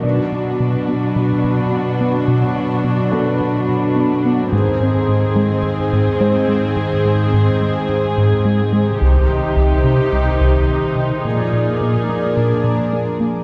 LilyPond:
<<
  \new Staff \with { instrumentName = "Grand piano" } { \time 4/4 \key aes \mixolydian \tempo 4 = 107 d''2. r4 | r4. a'2~ a'8~ | a'8 <c' c''>2~ <c' c''>8 c''4~ | c''2 r2 |
r1 | r4 <bes bes'>2. | }
  \new Staff \with { instrumentName = "Analog synth pad" } { \time 4/4 \key aes \mixolydian <fis d' fis' b'>1~ | <fis d' fis' b'>1 | <ees ees' aes' c''>1~ | <ees ees' aes' c''>1 |
<ees ees' g' c''>1 | <f aes' bes' d''>1 | }
  \new Staff \with { instrumentName = "Viola section" } { \time 4/4 \key aes \mixolydian << { fis'1~ | fis'1 | aes'1~ | aes'1 |
g'1 | aes'2.~ aes'8 r8 | } \\ { d'1~ | d'1 | c'1~ | c'1 |
ees'1~ | ees'2 d'4. r8 | } >> }
  \new Staff \with { instrumentName = "Analog synth bass" } { \clef bass \time 4/4 \key aes \mixolydian b,8 b,8 b,8 b8 b,8 b,8 b8 b8 | b,8 b,8 b,8 b8 b,8 b,8 b8 b8 | aes,8 aes,8 aes,8 aes8 aes,8 aes,8 aes8 aes8 | aes,8 aes,8 aes,8 aes8 aes,8 aes,8 aes8 aes8 |
c,8 c,8 c,8 c8 c,8 c,8 c8 c8 | bes,8 bes,8 bes,8 bes8 bes,8 bes,8 bes8 bes8 | }
  \new Staff \with { instrumentName = "Cello section" } { \clef bass \time 4/4 \key aes \mixolydian b,1~ | b,1 | aes,1~ | aes,1 |
c1 | bes,2.~ bes,8 r8 | }
>>